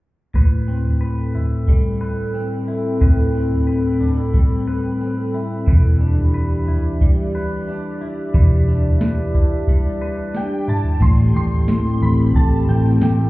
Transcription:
0.34 A2 C4 A4 B4 G5 B5, kick, floor tom
0.68 C4
0.85 floor tom
1.01 B4
1.35 E4, floor tom
1.68 G3, kick, floor tom
2.01 B4
2.34 C4
2.68 E4
3.01 A2 B4, kick, floor tom
3.34 C4
3.51 floor tom
3.67 B4
4.00 D4, floor tom
4.17 E4
4.34 G3, kick, floor tom
4.68 B4
5.01 C4
5.34 E4
5.67 E1 E3 G4 B4 D5 E5, kick, floor tom
6.01 D4
6.18 floor tom
6.34 B4
6.68 E4, floor tom
7.01 G3, kick, floor tom
7.35 B4
7.68 D4
8.01 E4
8.34 E1 E3 B4 A5, kick, floor tom
8.68 D4
8.85 floor tom
9.01 B4, snare
9.34 E4, kick, floor tom
9.67 G3, kick, floor tom
10.02 B4
10.34 D4 G5, snare
10.68 E4 A5, mid tom
10.84 floor tom
11.00 A1 A2 A3 C4 E4 G4 A4 C6, kick, floor tom, crash
11.34 A1 G4 C6
11.51 floor tom
11.68 snare
12.01 A1 C4 B5, floor tom
12.34 A1 G4 A5, kick, floor tom
12.67 A1 C4 G5
13.01 A1 G4 G5, snare

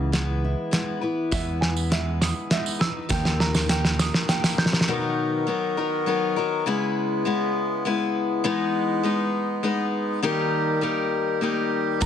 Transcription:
Already playing: C#2 C#3 E3 G#3 B3 E4 G#4 B4
0.12 G#3 B3 E4 B4, snare, closed hi-hat
0.44 E4
0.71 G#3 B3 E4 B4, snare, closed hi-hat
1.01 E3 B3 E4 B4
1.31 E2 E3 G#3 B3 B4 E5, kick, snare, closed hi-hat, tambourine
1.61 G#5, snare
1.76 tambourine
1.90 G#3 B3 B4 E5, snare, closed hi-hat
2.21 D#6, snare, tambourine
2.50 G#3 B3 D#4 B4 E5, snare, closed hi-hat
2.66 tambourine
2.79 B3 D#4 B4 E6, snare
3.09 D#2 D#3 A#3 D#4 G4 A#4 G5, kick, snare, closed hi-hat, tambourine
3.25 snare, tambourine
3.40 A#5, snare
3.54 snare, tambourine
3.69 A#3 D#4 G4 A#4 G5, snare, closed hi-hat
3.85 snare, tambourine
3.99 D#6, snare, tambourine
4.14 snare
4.28 A#3 D#4 G4 A#4 G5, snare, closed hi-hat, tambourine
4.44 snare, tambourine
4.58 G6, snare
4.66 snare
4.73 snare
4.81 snare
4.88 B2 D#3 F#3 B3 D#4 F#4 A#4
5.47 F#3 B3 D#4 A#4
5.77 F#3 B3 D#4 A#4
6.06 F#3 B3 D#4 A#4
6.36 F#3 B3 D#4 A#4
6.65 C#3 G#3 B3 E4 B4
7.25 G#3 B3 E4 B4
7.85 G#3 B3 E4 B4
8.44 E3 G#3 B3 D#4 B4
9.03 G#3 B3 D#4 B4
9.63 G#3 B3 D#4 B4
10.23 D#3 G3 A#3 D#4 G4 A#4
10.81 A#3 D#4 G4 A#4
11.41 A#3 D#4 G4 A#4
12.00 B1 B2 D#3 F#3 B3 D#4 A#4 A#5, kick, ride, tambourine

